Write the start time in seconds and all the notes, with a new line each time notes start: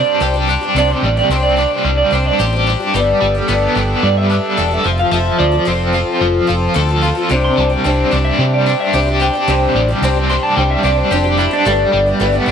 Already playing: G3 C4 D4 G4 C5 D5
0.20 C2 C3 G3 C4 D4 G4
0.34 C4 D4 G4
0.47 G3 C4 D4 G4
0.61 C4 D4 G4
0.74 C2 C3 G3 C4 D4 G4 D5
0.79 G4
0.90 C4 D4 G4 C5
1.03 A1 G3 D5
1.17 C4 D4 G4 D5
1.29 C2 C3 G3 C4 D4 G4 C5
1.43 D5
1.57 C4 D4 G4 D5
1.71 C5
1.84 C2 G3 D5
1.97 D5
2.11 C2 G3 C4 D4 C5
2.15 G4
2.26 D5
2.39 A1 C3 G3 C4 D4 G4 C5
2.53 C4 D4 G4
2.67 G3 C4 D4 G4
2.80 C4 D4 G4
2.94 G1 G2 D3 G3 A3 B3 D4 G4 A4
3.21 G1 G3
3.35 A3 B3 D4 G4
3.48 G1 G2 D3 A3 B3 D4 G4
3.75 G1 A3 B3 D4 G4
4.03 G2 G3 D5
4.18 E5
4.30 A3 B3 D4 G4
4.57 E1 G2 D3 A3 B3 D4 G4 A4
4.71 A3 B3 D4 G4
4.84 F1 F3 C4 F4 A4
4.98 C4 F4 A4 F5
5.11 F1 F3 C4 F4 A4 E5
5.39 D2 F3 D5
5.52 C4 F4 A4
5.65 F1 F3 C4 F4 A4 C5
5.93 F3 C4 F4 A4
6.21 F1 F3
6.47 F1 F3 C4 F4 A4
6.74 D2 F3 C4 F4 A4
6.89 C4 F4 A4
7.01 F3 C4 F4 A4
7.15 C4 F4 A4
7.29 C2 C3 G3 C4 D4 G4 C5
7.44 C6
7.57 C2 G3 A5
7.70 C4 D4 G4 G5
7.84 C2 C3 G3 C4 D4 G4 C5
8.11 C2 G3 C4 D4 G4
8.25 E5
8.37 C3 G3 D4 G4 C5
8.54 D5
8.66 G3 C4 D4 G4
8.80 E5
8.93 C2 C3 G3 C4 D4 G4 C5
9.07 C4 D4 G4
9.20 G3 C4 D4 G4 G5
9.33 C4 D4 G4
9.47 C2 C3 G3 C4 D4 G4 C5
9.75 A1 G3
9.89 C4 D4 G4
10.02 C2 C3 G3 C4 D4 G4 C5
10.16 C4 D4 G4
10.30 G3 C4 D4 G4 C6
10.43 A5
10.56 C2 G3 D4 G4 C5 G5
10.71 E5
10.83 C2 G3 C4 D4 G4 D5
10.97 C5
11.11 F1 C3 G3 C4 D4 G4 A4 C5
11.24 C4 D4 G4
11.37 G3 C4 D4 E4 G4
11.51 C4 D4 G4
11.65 G1 G2 D3 G3 A3 B3 D4 G4 A4 B4
11.93 G1 G3
12.06 A3 B3 D4 G4
12.20 G1 G2 D3 A3 B3 D4 G4 A4 B4
12.32 A3 B3 D4 G4
12.46 G1 A3 B3 D4